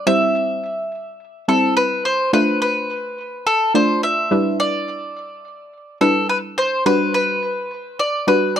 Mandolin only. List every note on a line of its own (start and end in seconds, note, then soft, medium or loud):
0.07 1.44 E5 loud
1.49 1.76 A4 medium
1.77 2.03 B4 medium
2.05 2.31 C5 medium
2.33 2.60 B4 loud
2.62 3.46 B4 medium
3.47 3.73 A4 medium
3.75 4.03 C5 medium
4.03 4.59 E5 loud
4.60 5.97 D5 loud
6.01 6.27 A4 medium
6.29 6.37 B4 medium
6.58 6.86 C5 medium
6.86 7.12 B4 medium
7.14 7.99 B4 medium
7.99 8.27 D5 medium
8.28 8.56 B4 medium
8.56 8.60 D5 medium